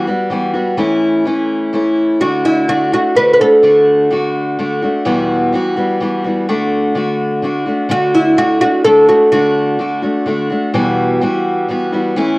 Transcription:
0.07 G3 B3 F#4
0.30 E3 G3 B3 F#4
0.54 G3 B3 F#4
0.77 E3 A3 C#4 E4
1.25 E3 A3 C#4 E4
1.73 E3 A3 C#4 E4
2.20 D3 A3 D4 F#4
2.45 E4
2.68 D3 A3 D4 F#4
2.92 A3 D4 F#4
3.15 D3 A3 D4 F#4 B4
3.34 B4
3.40 A3 D4 F#4 A4
3.63 D3 A3 D4 F#4
4.11 D3 A3 D4 F#4
4.59 D3 A3 D4 F#4
4.82 A3 D4 F#4
5.05 E2 B2 E3 G3 B3 F#4
5.52 E3 G3 B3 F#4
5.76 E3 G3 B3 F#4
6.00 E3 G3 B3 F#4
6.24 E3 G3 B3 F#4
6.49 D3 A3 D4 F#4
6.95 D3 A3 D4 F#4
7.42 D3 A3 D4 F#4
7.66 A3 D4 F#4
7.89 D3 A3 D4 F#4
8.15 E4
8.37 D3 A3 D4 F#4
8.61 A3 D4 F#4
8.84 D3 A3 D4 F#4 A4
9.08 A3 D4 F#4
9.32 D3 A3 D4 F#4
9.79 D3 A3 D4 F#4
10.02 A3 D4 F#4
10.26 D3 A3 D4 F#4
10.50 A3 D4 F#4
10.73 E2 B2 E3 G3 B3 F#4
11.21 E3 G3 B3 F#4
11.68 E3 G3 B3 F#4
11.92 E3 G3 B3 F#4
12.16 E3 A3 C#4 E4

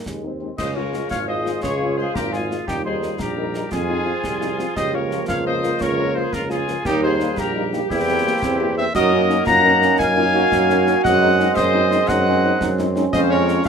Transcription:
0.06 D#2 G#3, concert bass drum, snare
0.24 G#3 C4 D#4
0.41 G#3 C4 D#4
0.58 C#2 G#3 F4 G#4 C5 D#5 D#6, concert bass drum, snare, crash
0.75 G#3 F4 A#4 C#5 C#6
0.94 G#3 F4, snare
1.10 G#1 F4 C#5 F5 F6, concert bass drum, snare
1.27 G#3 F4 C5 D#5 D#6
1.46 G#3 F4, snare
1.63 C#2 F4 G#4 C#5 C#6, concert bass drum, snare
1.81 G#3 F4
1.97 G#3 F4 G#4 C5 C6
2.15 G#1 G4 A#4 A#5, concert bass drum, snare
2.32 G#3 F4 G#4 G#5, snare
2.50 G#3 F4, snare
2.67 D#2 G3 D#4 G4 G5, concert bass drum, snare
2.85 G3 D#4 G#4 A#4 C5 C6
3.02 G3 D#4 A#4, snare
3.19 A#1 G4 A#4 A#5, concert bass drum, snare
3.37 G3 D#4 A#4
3.54 G3 D#4 A#4, snare
3.71 F2 F3 C4 F4 G#4 G#5, concert bass drum, snare
3.89 F3 C4 D#4 F4
4.06 F3 C4 F4
4.24 C2 C4, concert bass drum, snare
4.41 F3 C4 D#4 F4, snare
4.59 F3 C4 F4, snare
4.76 C#2 F3 A#3 G4 C5 D#5 D#6, concert bass drum, snare, crash
4.93 F3 A#3 F4 A#4 C#5 C#6
5.11 F3 A#3 F4, snare
5.28 C#2 F4 C#5 F5 F6, concert bass drum, snare
5.46 F3 A#3 F4 C5 D#5 D#6
5.63 F3 A#3 F4, snare
5.81 C#2 A#4 C#5 C#6, concert bass drum, snare
5.99 F3 A#3 F4
6.15 F3 A#3 F4 G#4 C5 C6
6.33 C#2 F4 A#4 A#5, concert bass drum, snare
6.50 F3 A#3 F4 G#4 G#5, snare
6.68 F3 A#3 F4, snare
6.85 D#2 G3 A#3 D#4 G4 G5, concert bass drum, snare
7.03 G3 A#3 D#4 G#4 C5 C6
7.20 G3 A#3 D#4, snare
7.37 A#1 G4 A#4 A#5, concert bass drum, snare
7.55 G3 A#3 D#4
7.73 G3 A#3 D#4 G4, snare
7.90 E2 A#3 C4 E4 G4 G5, concert bass drum, snare
8.08 A#3 C4 G4
8.25 A#3 C4 G4
8.42 E2 C4, concert bass drum, snare
8.60 A#3 C4 E4 G4
8.77 A#3 C4 G4 C5 E5 E6
8.94 F#2 A#3 D#4 F#4 A#4 D#5 D#6, concert bass drum, snare, crash
9.12 A#3 C#4 D#4
9.29 A#3 C#4 D#4, snare
9.46 F#2 F4 F#5 A#5 A#6, concert bass drum, snare
9.64 A#3 C#4 D#4
9.82 A#3 C#4 D#4, snare
9.99 F#2 D#4 F5 G#5 G#6, concert bass drum, snare
10.16 A#3 C#4 D#4 F4
10.33 A#3 C#4 D#4 F#4
10.52 F#2, concert bass drum, snare
10.69 A#3 C#4 D#4, snare
10.87 A#3 C#4 D#4, snare
11.04 F#2 G#3 C4 D#5 F#5 F#6, concert bass drum, snare
11.22 G#3 C4 D#4
11.39 G#3 C4 D#4, snare
11.56 F#2 C5 D#5 D#6, concert bass drum, snare
11.74 G#3 C4 D#4
11.91 G#3 C4 D#4, snare
12.08 F#2 D#4 D#5 F#5 F#6, concert bass drum, snare
12.27 G#3 C4 C#4 D#4
12.44 G#3 C4 D#4
12.61 F#2 D#4, concert bass drum, snare
12.78 G#3 C4 D#4, snare
12.96 G#3 C4 C#4 D#4, snare
13.13 F2 G#3 C#4 F4 C5 D#5 D#6, concert bass drum, snare, crash
13.30 A#4 C#5 C#6
13.48 snare
13.65 G#3 F4 C#5

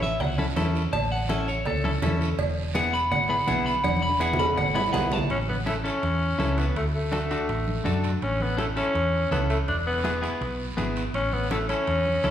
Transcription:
Already playing: A1
0.02 E5, high conga, short guiro
0.20 C#2 F#5, cowbell, high conga, low conga, long guiro
0.38 C#4 E4 A4, high conga
0.56 E2 C#4 E4 A4, cowbell, high conga, low timbale, short guiro
0.75 short guiro
0.93 A1 A5, cowbell, high conga, low conga, long guiro
1.12 F#5
1.29 C#4 E4 A4 E5, cowbell, high conga, short guiro
1.48 C#5, short guiro
1.65 C#2 A4, cowbell, high conga, low conga, long guiro
1.84 C#4 E4 A4, high conga
2.02 E2 C#4 E4 A4, cowbell, high conga, low conga, low timbale, short guiro
2.21 short guiro
2.38 E1, cowbell, high conga, low conga, long guiro
2.75 B3 E4 G#4 F#5, cowbell, high conga, short guiro
2.93 B5, short guiro
3.11 G#1 F#5, cowbell, high conga, low conga, long guiro
3.29 B3 E4 G#4 B5
3.47 B1 B3 E4 G#4 F#5, cowbell, high conga, low conga, short guiro
3.66 B5, short guiro
3.84 E1 F#5, cowbell, high conga, long guiro
3.97 high conga
4.02 B5
4.09 high conga
4.20 B3 E4 G#4 F#5, cowbell, short guiro
4.33 low conga
4.39 B5, high timbale, short guiro
4.57 G#1 F#5, cowbell, low conga, long guiro
4.75 B3 E4 G#4 B5, low timbale
4.93 B1 B3 E4 G#4 F#5, cowbell, low conga, low timbale, short guiro
5.12 A5, low timbale, short guiro
5.18 low conga
5.30 A1 C#4, high conga, high timbale, long guiro
5.49 B3, high conga
5.66 A3 C#4 E4 A4, high conga, high timbale, short guiro
5.84 C#4 E4 A4, high timbale, short guiro
6.03 E2, high conga, high timbale, long guiro
6.38 C#2 C#4 E4 A4, high conga, high timbale, low timbale, short guiro
6.58 B3, high timbale, short guiro
6.76 D2 A3, high conga, high timbale, long guiro
6.95 A3
7.12 D4 F#4 A4, high conga, high timbale, short guiro
7.31 D4 F#4 A4, high timbale, short guiro
7.49 A1, high conga, high timbale, long guiro
7.67 high conga
7.85 F#2 D4 F#4 A4, high conga, high timbale, short guiro
8.04 high timbale, short guiro
8.22 A1 C#4, high conga, high timbale, long guiro
8.40 B3, high conga
8.57 A3 C#4 E4 A4, high conga, high timbale, short guiro
8.76 C#4 E4 A4, high timbale, short guiro
8.95 E2, high conga, high timbale, long guiro
9.31 C#2 B3 C#4 E4 A4, high conga, high timbale, short guiro
9.50 A3, high timbale, short guiro
9.68 E1 D4, high conga, high timbale, long guiro
9.87 B3
10.04 B3 E4 G#4, high conga, high timbale, short guiro
10.22 B3 E4 G#4, high timbale, short guiro
10.41 B1, high conga, high timbale, long guiro
10.77 G#1 B3 E4 G#4, high conga, high timbale, short guiro
10.96 high timbale, short guiro
11.14 A1 C#4, high conga, high timbale, long guiro
11.32 B3, high conga
11.50 A3 C#4 E4 A4, high conga, high timbale, short guiro
11.68 C#4 E4 A4, high timbale, short guiro
11.87 E2, high conga, high timbale, long guiro
12.06 high conga
12.24 C#2 C#4 E4 A4, high conga, high timbale, short guiro

